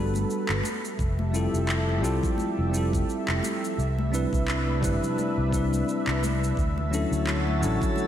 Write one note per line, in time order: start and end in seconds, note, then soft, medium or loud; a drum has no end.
0.00 0.24 G1 medium
0.00 0.62 G3 medium
0.00 0.62 B3 medium
0.00 0.63 D4 medium
0.00 0.61 F#4 medium
0.00 0.63 F#4 medium
0.00 0.62 A4 medium
0.00 0.64 A4 medium
0.00 0.61 B4 medium
0.14 high conga medium
0.14 shaker soft
0.30 shaker soft
0.49 0.61 G1 medium
0.49 clap medium
0.63 3.75 F3 medium
0.63 3.75 G4 medium
0.63 3.75 A4 medium
0.63 8.07 E5 medium
0.63 high conga medium
0.63 shaker medium
0.85 shaker soft
0.99 1.46 F1 medium
0.99 kick loud
0.99 shaker soft
1.19 high conga medium
1.32 1.99 G3 medium
1.32 2.00 C4 medium
1.32 2.00 E4 medium
1.32 2.01 F4 medium
1.32 shaker medium
1.36 2.01 A4 medium
1.54 2.04 F1 medium
1.54 shaker soft
1.69 clap medium
1.69 shaker soft
1.89 high conga medium
2.01 2.19 C2 medium
2.01 2.68 G3 medium
2.01 2.69 C4 medium
2.01 2.70 E4 medium
2.01 2.70 F4 medium
2.01 2.71 A4 loud
2.01 shaker medium
2.23 kick loud
2.23 low conga medium
2.23 shaker soft
2.38 high conga medium
2.38 shaker soft
2.59 3.03 F1 medium
2.69 3.74 G3 medium
2.69 3.75 C4 medium
2.69 3.76 E4 medium
2.69 low conga medium
2.74 3.77 F4 medium
2.74 3.78 A4 medium
2.74 shaker medium
2.93 kick medium
2.93 high conga medium
2.93 shaker soft
3.09 shaker soft
3.28 3.40 F1 medium
3.28 clap medium
3.43 high conga medium
3.43 shaker medium
3.64 shaker soft
3.78 4.25 C2 medium
3.78 6.54 C3 medium
3.78 6.55 D4 medium
3.78 6.55 B4 medium
3.78 shaker soft
3.98 high conga medium
4.11 4.78 G3 medium
4.11 4.79 C4 medium
4.11 4.79 D4 medium
4.11 4.80 E4 medium
4.11 low conga medium
4.11 shaker medium
4.15 4.80 B4 medium
4.33 4.84 C2 medium
4.33 kick loud
4.33 shaker soft
4.48 clap medium
4.48 shaker soft
4.67 high conga medium
4.81 4.98 G1 medium
4.81 5.47 G3 medium
4.81 5.48 C4 medium
4.81 5.49 D4 medium
4.81 5.50 E4 medium
4.81 5.50 B4 loud
4.81 kick loud
4.81 shaker medium
5.02 low conga medium
5.02 shaker soft
5.18 high conga medium
5.18 shaker soft
5.38 5.82 C2 medium
5.48 6.53 G3 medium
5.48 6.55 C4 medium
5.53 6.55 D4 medium
5.53 6.56 E4 medium
5.53 6.57 B4 medium
5.53 kick medium
5.53 low conga medium
5.53 shaker medium
5.73 high conga medium
5.73 shaker soft
5.89 shaker soft
6.07 6.51 C2 medium
6.07 clap medium
6.23 high conga medium
6.23 shaker medium
6.44 shaker soft
6.57 7.04 D2 medium
6.57 8.07 D3 medium
6.57 8.07 F#4 medium
6.57 8.07 A4 medium
6.57 8.07 C#5 medium
6.57 8.07 A5 medium
6.57 kick loud
6.57 shaker soft
6.78 high conga medium
6.90 7.57 F#3 medium
6.90 7.58 C#4 medium
6.90 7.59 D4 medium
6.90 7.59 E4 medium
6.90 shaker medium
6.95 7.59 A4 medium
7.12 7.63 D2 medium
7.12 shaker soft
7.27 clap medium
7.27 shaker soft
7.47 high conga medium
7.61 7.77 A1 medium
7.61 8.07 F#3 loud
7.61 8.07 C#4 medium
7.61 8.07 D4 medium
7.61 8.07 E4 medium
7.61 8.07 A4 loud
7.61 shaker medium
7.81 kick loud
7.81 low conga medium
7.81 shaker soft
7.96 high conga medium
7.96 shaker soft